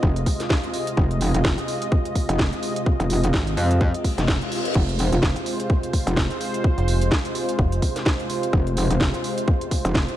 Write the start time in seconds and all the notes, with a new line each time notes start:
Already playing: C3 G#3 F4 D#5
0.03 F1, kick
0.16 closed hi-hat
0.26 kick, open hi-hat
0.40 snare, closed hi-hat
0.50 kick, snare
0.64 closed hi-hat
0.74 open hi-hat
0.87 closed hi-hat
0.97 F1, kick
1.11 closed hi-hat
1.21 open hi-hat
1.34 F1, closed hi-hat
1.45 F1, kick, snare
1.58 closed hi-hat
1.68 open hi-hat
1.82 closed hi-hat
1.92 kick
2.05 closed hi-hat
2.15 kick, open hi-hat
2.29 F1, closed hi-hat
2.39 kick, snare
2.53 closed hi-hat
2.63 open hi-hat
2.76 closed hi-hat
2.86 kick
3.00 F1, closed hi-hat
3.10 open hi-hat
3.24 closed hi-hat
3.34 G#1, kick, snare
3.47 closed hi-hat
3.57 F2, open hi-hat
3.71 closed hi-hat
3.81 kick, reverse cymbal
3.94 closed hi-hat
4.04 kick, open hi-hat
4.18 F1, snare, closed hi-hat
4.28 kick, snare
4.42 closed hi-hat
4.52 open hi-hat
4.65 closed hi-hat
4.75 F1 C5, kick, crash
4.89 closed hi-hat
4.99 open hi-hat
5.12 F1, closed hi-hat
5.22 F1, kick, snare
5.36 closed hi-hat
5.46 open hi-hat
5.60 closed hi-hat
5.70 kick
5.83 closed hi-hat
5.93 kick, open hi-hat
6.07 F1, closed hi-hat
6.17 kick, snare
6.31 closed hi-hat
6.41 open hi-hat
6.54 closed hi-hat
6.64 kick
6.78 F1, closed hi-hat
6.88 open hi-hat
7.01 closed hi-hat
7.11 kick, snare
7.25 closed hi-hat
7.35 open hi-hat
7.49 closed hi-hat
7.59 F1, kick
7.72 closed hi-hat
7.82 kick, open hi-hat
7.96 snare, closed hi-hat
8.06 kick, snare
8.20 closed hi-hat
8.30 open hi-hat
8.43 closed hi-hat
8.53 F1, kick
8.67 closed hi-hat
8.77 open hi-hat
8.90 F1, closed hi-hat
9.00 F1, kick, snare
9.14 closed hi-hat
9.24 open hi-hat
9.38 closed hi-hat
9.48 kick
9.61 closed hi-hat
9.71 kick, open hi-hat
9.85 F1, closed hi-hat
9.95 kick, snare
10.09 closed hi-hat